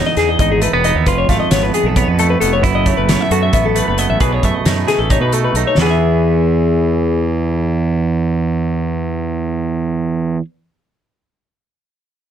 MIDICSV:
0, 0, Header, 1, 5, 480
1, 0, Start_track
1, 0, Key_signature, 4, "major"
1, 0, Tempo, 447094
1, 1152, Time_signature, 7, 3, 24, 8
1, 13211, End_track
2, 0, Start_track
2, 0, Title_t, "Clean electric guitar"
2, 0, Program_c, 0, 27
2, 69, Note_on_c, 0, 75, 61
2, 185, Note_on_c, 0, 68, 70
2, 191, Note_off_c, 0, 75, 0
2, 309, Note_off_c, 0, 68, 0
2, 312, Note_on_c, 0, 75, 64
2, 420, Note_off_c, 0, 75, 0
2, 433, Note_on_c, 0, 75, 67
2, 552, Note_off_c, 0, 75, 0
2, 553, Note_on_c, 0, 68, 65
2, 670, Note_off_c, 0, 68, 0
2, 674, Note_on_c, 0, 71, 65
2, 775, Note_off_c, 0, 71, 0
2, 788, Note_on_c, 0, 71, 62
2, 910, Note_off_c, 0, 71, 0
2, 911, Note_on_c, 0, 75, 74
2, 1034, Note_off_c, 0, 75, 0
2, 1034, Note_on_c, 0, 76, 62
2, 1146, Note_on_c, 0, 71, 75
2, 1153, Note_off_c, 0, 76, 0
2, 1267, Note_on_c, 0, 73, 71
2, 1269, Note_off_c, 0, 71, 0
2, 1383, Note_off_c, 0, 73, 0
2, 1387, Note_on_c, 0, 77, 71
2, 1497, Note_off_c, 0, 77, 0
2, 1502, Note_on_c, 0, 75, 64
2, 1618, Note_off_c, 0, 75, 0
2, 1622, Note_on_c, 0, 73, 82
2, 1747, Note_off_c, 0, 73, 0
2, 1750, Note_on_c, 0, 71, 60
2, 1867, Note_off_c, 0, 71, 0
2, 1871, Note_on_c, 0, 68, 65
2, 2001, Note_off_c, 0, 68, 0
2, 2001, Note_on_c, 0, 69, 67
2, 2112, Note_off_c, 0, 69, 0
2, 2112, Note_on_c, 0, 73, 67
2, 2235, Note_off_c, 0, 73, 0
2, 2235, Note_on_c, 0, 71, 69
2, 2351, Note_off_c, 0, 71, 0
2, 2356, Note_on_c, 0, 69, 68
2, 2467, Note_off_c, 0, 69, 0
2, 2472, Note_on_c, 0, 71, 64
2, 2578, Note_off_c, 0, 71, 0
2, 2582, Note_on_c, 0, 69, 72
2, 2708, Note_off_c, 0, 69, 0
2, 2717, Note_on_c, 0, 73, 68
2, 2835, Note_off_c, 0, 73, 0
2, 2835, Note_on_c, 0, 71, 86
2, 2950, Note_off_c, 0, 71, 0
2, 2954, Note_on_c, 0, 75, 70
2, 3079, Note_off_c, 0, 75, 0
2, 3079, Note_on_c, 0, 73, 65
2, 3187, Note_off_c, 0, 73, 0
2, 3191, Note_on_c, 0, 71, 64
2, 3321, Note_off_c, 0, 71, 0
2, 3321, Note_on_c, 0, 73, 83
2, 3444, Note_off_c, 0, 73, 0
2, 3444, Note_on_c, 0, 76, 60
2, 3560, Note_off_c, 0, 76, 0
2, 3563, Note_on_c, 0, 69, 64
2, 3679, Note_off_c, 0, 69, 0
2, 3679, Note_on_c, 0, 76, 61
2, 3788, Note_off_c, 0, 76, 0
2, 3801, Note_on_c, 0, 76, 72
2, 3919, Note_off_c, 0, 76, 0
2, 3923, Note_on_c, 0, 69, 64
2, 4039, Note_on_c, 0, 71, 65
2, 4040, Note_off_c, 0, 69, 0
2, 4153, Note_off_c, 0, 71, 0
2, 4166, Note_on_c, 0, 71, 59
2, 4282, Note_off_c, 0, 71, 0
2, 4282, Note_on_c, 0, 75, 67
2, 4396, Note_off_c, 0, 75, 0
2, 4400, Note_on_c, 0, 76, 61
2, 4514, Note_off_c, 0, 76, 0
2, 4518, Note_on_c, 0, 71, 80
2, 4644, Note_off_c, 0, 71, 0
2, 4644, Note_on_c, 0, 73, 68
2, 4762, Note_off_c, 0, 73, 0
2, 4762, Note_on_c, 0, 76, 68
2, 4879, Note_off_c, 0, 76, 0
2, 4879, Note_on_c, 0, 75, 65
2, 4998, Note_off_c, 0, 75, 0
2, 4998, Note_on_c, 0, 73, 81
2, 5113, Note_off_c, 0, 73, 0
2, 5113, Note_on_c, 0, 71, 60
2, 5235, Note_off_c, 0, 71, 0
2, 5243, Note_on_c, 0, 68, 61
2, 5357, Note_on_c, 0, 69, 61
2, 5360, Note_off_c, 0, 68, 0
2, 5479, Note_off_c, 0, 69, 0
2, 5479, Note_on_c, 0, 73, 72
2, 5593, Note_off_c, 0, 73, 0
2, 5598, Note_on_c, 0, 71, 67
2, 5725, Note_off_c, 0, 71, 0
2, 5725, Note_on_c, 0, 69, 65
2, 5840, Note_off_c, 0, 69, 0
2, 5845, Note_on_c, 0, 71, 56
2, 5970, Note_off_c, 0, 71, 0
2, 5970, Note_on_c, 0, 69, 71
2, 6083, Note_off_c, 0, 69, 0
2, 6091, Note_on_c, 0, 73, 64
2, 6204, Note_off_c, 0, 73, 0
2, 6249, Note_on_c, 0, 68, 63
2, 6292, Note_on_c, 0, 71, 55
2, 6334, Note_off_c, 0, 71, 0
2, 6338, Note_on_c, 0, 76, 58
2, 11150, Note_off_c, 0, 68, 0
2, 11195, Note_off_c, 0, 76, 0
2, 13211, End_track
3, 0, Start_track
3, 0, Title_t, "Clean electric guitar"
3, 0, Program_c, 1, 27
3, 0, Note_on_c, 1, 40, 71
3, 0, Note_on_c, 1, 59, 46
3, 0, Note_on_c, 1, 63, 55
3, 0, Note_on_c, 1, 68, 61
3, 199, Note_off_c, 1, 68, 0
3, 203, Note_on_c, 1, 68, 55
3, 433, Note_off_c, 1, 63, 0
3, 446, Note_on_c, 1, 63, 49
3, 658, Note_off_c, 1, 59, 0
3, 662, Note_on_c, 1, 57, 51
3, 787, Note_off_c, 1, 57, 0
3, 787, Note_on_c, 1, 59, 47
3, 902, Note_off_c, 1, 63, 0
3, 914, Note_on_c, 1, 63, 55
3, 1124, Note_off_c, 1, 63, 0
3, 1146, Note_off_c, 1, 40, 0
3, 1149, Note_off_c, 1, 59, 0
3, 1151, Note_on_c, 1, 41, 72
3, 1152, Note_off_c, 1, 68, 0
3, 1156, Note_on_c, 1, 65, 65
3, 1389, Note_on_c, 1, 57, 53
3, 1631, Note_on_c, 1, 59, 54
3, 1868, Note_off_c, 1, 65, 0
3, 1872, Note_on_c, 1, 68, 55
3, 2108, Note_off_c, 1, 59, 0
3, 2112, Note_on_c, 1, 59, 56
3, 2349, Note_off_c, 1, 57, 0
3, 2353, Note_on_c, 1, 57, 49
3, 2584, Note_off_c, 1, 59, 0
3, 2588, Note_on_c, 1, 59, 50
3, 2805, Note_off_c, 1, 41, 0
3, 2818, Note_on_c, 1, 42, 67
3, 2822, Note_off_c, 1, 68, 0
3, 2826, Note_on_c, 1, 64, 71
3, 3064, Note_off_c, 1, 57, 0
3, 3068, Note_on_c, 1, 57, 53
3, 3312, Note_off_c, 1, 59, 0
3, 3316, Note_on_c, 1, 59, 51
3, 3551, Note_off_c, 1, 64, 0
3, 3560, Note_on_c, 1, 66, 53
3, 3785, Note_off_c, 1, 59, 0
3, 3789, Note_on_c, 1, 59, 52
3, 4018, Note_off_c, 1, 57, 0
3, 4030, Note_on_c, 1, 57, 52
3, 4268, Note_off_c, 1, 59, 0
3, 4272, Note_on_c, 1, 59, 51
3, 4480, Note_off_c, 1, 42, 0
3, 4514, Note_on_c, 1, 47, 74
3, 4516, Note_off_c, 1, 66, 0
3, 4520, Note_on_c, 1, 68, 69
3, 4754, Note_off_c, 1, 57, 0
3, 4772, Note_on_c, 1, 57, 54
3, 4995, Note_off_c, 1, 59, 0
3, 5004, Note_on_c, 1, 63, 51
3, 5221, Note_off_c, 1, 68, 0
3, 5234, Note_on_c, 1, 68, 57
3, 5469, Note_off_c, 1, 63, 0
3, 5481, Note_on_c, 1, 63, 50
3, 5713, Note_off_c, 1, 57, 0
3, 5726, Note_on_c, 1, 57, 47
3, 5959, Note_off_c, 1, 63, 0
3, 5975, Note_on_c, 1, 63, 52
3, 6167, Note_off_c, 1, 68, 0
3, 6177, Note_off_c, 1, 63, 0
3, 6196, Note_off_c, 1, 47, 0
3, 6201, Note_off_c, 1, 57, 0
3, 6202, Note_on_c, 1, 40, 61
3, 6227, Note_on_c, 1, 52, 61
3, 6243, Note_on_c, 1, 59, 61
3, 6293, Note_on_c, 1, 68, 56
3, 11170, Note_off_c, 1, 40, 0
3, 11182, Note_off_c, 1, 52, 0
3, 11190, Note_off_c, 1, 59, 0
3, 11215, Note_off_c, 1, 68, 0
3, 13211, End_track
4, 0, Start_track
4, 0, Title_t, "Fingered electric bass"
4, 0, Program_c, 2, 33
4, 181, Note_on_c, 2, 40, 76
4, 377, Note_off_c, 2, 40, 0
4, 422, Note_on_c, 2, 32, 86
4, 713, Note_off_c, 2, 32, 0
4, 780, Note_on_c, 2, 28, 74
4, 976, Note_off_c, 2, 28, 0
4, 1021, Note_on_c, 2, 39, 80
4, 1121, Note_off_c, 2, 39, 0
4, 1142, Note_on_c, 2, 29, 93
4, 1337, Note_off_c, 2, 29, 0
4, 1380, Note_on_c, 2, 32, 85
4, 1481, Note_off_c, 2, 32, 0
4, 1621, Note_on_c, 2, 32, 81
4, 1817, Note_off_c, 2, 32, 0
4, 1971, Note_on_c, 2, 35, 83
4, 2171, Note_off_c, 2, 35, 0
4, 2233, Note_on_c, 2, 41, 74
4, 2521, Note_off_c, 2, 41, 0
4, 2596, Note_on_c, 2, 29, 77
4, 2826, Note_off_c, 2, 29, 0
4, 2826, Note_on_c, 2, 30, 95
4, 3117, Note_off_c, 2, 30, 0
4, 3193, Note_on_c, 2, 30, 72
4, 3385, Note_off_c, 2, 30, 0
4, 3552, Note_on_c, 2, 42, 88
4, 3745, Note_off_c, 2, 42, 0
4, 3792, Note_on_c, 2, 33, 82
4, 4081, Note_off_c, 2, 33, 0
4, 4167, Note_on_c, 2, 30, 70
4, 4354, Note_off_c, 2, 30, 0
4, 4404, Note_on_c, 2, 33, 83
4, 4497, Note_off_c, 2, 33, 0
4, 4513, Note_on_c, 2, 35, 90
4, 4706, Note_off_c, 2, 35, 0
4, 4753, Note_on_c, 2, 42, 86
4, 4850, Note_off_c, 2, 42, 0
4, 5000, Note_on_c, 2, 42, 86
4, 5190, Note_off_c, 2, 42, 0
4, 5353, Note_on_c, 2, 33, 86
4, 5546, Note_off_c, 2, 33, 0
4, 5584, Note_on_c, 2, 47, 72
4, 5876, Note_off_c, 2, 47, 0
4, 5948, Note_on_c, 2, 35, 72
4, 6047, Note_off_c, 2, 35, 0
4, 6197, Note_on_c, 2, 40, 92
4, 11124, Note_off_c, 2, 40, 0
4, 13211, End_track
5, 0, Start_track
5, 0, Title_t, "Drums"
5, 178, Note_on_c, 9, 42, 52
5, 184, Note_on_c, 9, 38, 29
5, 285, Note_off_c, 9, 42, 0
5, 292, Note_off_c, 9, 38, 0
5, 420, Note_on_c, 9, 42, 74
5, 422, Note_on_c, 9, 36, 94
5, 527, Note_off_c, 9, 42, 0
5, 529, Note_off_c, 9, 36, 0
5, 660, Note_on_c, 9, 42, 60
5, 768, Note_off_c, 9, 42, 0
5, 902, Note_on_c, 9, 42, 51
5, 1010, Note_off_c, 9, 42, 0
5, 1142, Note_on_c, 9, 42, 67
5, 1145, Note_on_c, 9, 36, 87
5, 1249, Note_off_c, 9, 42, 0
5, 1252, Note_off_c, 9, 36, 0
5, 1384, Note_on_c, 9, 42, 56
5, 1385, Note_on_c, 9, 36, 73
5, 1390, Note_on_c, 9, 38, 35
5, 1491, Note_off_c, 9, 42, 0
5, 1492, Note_off_c, 9, 36, 0
5, 1498, Note_off_c, 9, 38, 0
5, 1621, Note_on_c, 9, 42, 80
5, 1627, Note_on_c, 9, 38, 111
5, 1728, Note_off_c, 9, 42, 0
5, 1735, Note_off_c, 9, 38, 0
5, 1867, Note_on_c, 9, 42, 51
5, 1975, Note_off_c, 9, 42, 0
5, 2104, Note_on_c, 9, 42, 71
5, 2106, Note_on_c, 9, 36, 90
5, 2212, Note_off_c, 9, 42, 0
5, 2214, Note_off_c, 9, 36, 0
5, 2347, Note_on_c, 9, 42, 54
5, 2455, Note_off_c, 9, 42, 0
5, 2591, Note_on_c, 9, 42, 50
5, 2698, Note_off_c, 9, 42, 0
5, 2831, Note_on_c, 9, 36, 96
5, 2833, Note_on_c, 9, 42, 65
5, 2939, Note_off_c, 9, 36, 0
5, 2940, Note_off_c, 9, 42, 0
5, 3069, Note_on_c, 9, 42, 51
5, 3071, Note_on_c, 9, 36, 76
5, 3176, Note_off_c, 9, 42, 0
5, 3179, Note_off_c, 9, 36, 0
5, 3314, Note_on_c, 9, 42, 83
5, 3320, Note_on_c, 9, 38, 105
5, 3421, Note_off_c, 9, 42, 0
5, 3428, Note_off_c, 9, 38, 0
5, 3555, Note_on_c, 9, 42, 53
5, 3662, Note_off_c, 9, 42, 0
5, 3789, Note_on_c, 9, 42, 76
5, 3795, Note_on_c, 9, 36, 98
5, 3896, Note_off_c, 9, 42, 0
5, 3902, Note_off_c, 9, 36, 0
5, 4033, Note_on_c, 9, 42, 64
5, 4140, Note_off_c, 9, 42, 0
5, 4270, Note_on_c, 9, 42, 55
5, 4378, Note_off_c, 9, 42, 0
5, 4512, Note_on_c, 9, 42, 73
5, 4516, Note_on_c, 9, 36, 87
5, 4620, Note_off_c, 9, 42, 0
5, 4623, Note_off_c, 9, 36, 0
5, 4758, Note_on_c, 9, 36, 68
5, 4758, Note_on_c, 9, 42, 59
5, 4865, Note_off_c, 9, 36, 0
5, 4865, Note_off_c, 9, 42, 0
5, 4998, Note_on_c, 9, 42, 91
5, 5004, Note_on_c, 9, 38, 111
5, 5105, Note_off_c, 9, 42, 0
5, 5112, Note_off_c, 9, 38, 0
5, 5241, Note_on_c, 9, 42, 50
5, 5247, Note_on_c, 9, 38, 31
5, 5348, Note_off_c, 9, 42, 0
5, 5355, Note_off_c, 9, 38, 0
5, 5477, Note_on_c, 9, 42, 79
5, 5480, Note_on_c, 9, 36, 86
5, 5584, Note_off_c, 9, 42, 0
5, 5587, Note_off_c, 9, 36, 0
5, 5716, Note_on_c, 9, 42, 60
5, 5824, Note_off_c, 9, 42, 0
5, 5958, Note_on_c, 9, 42, 54
5, 6066, Note_off_c, 9, 42, 0
5, 6204, Note_on_c, 9, 38, 87
5, 6311, Note_off_c, 9, 38, 0
5, 13211, End_track
0, 0, End_of_file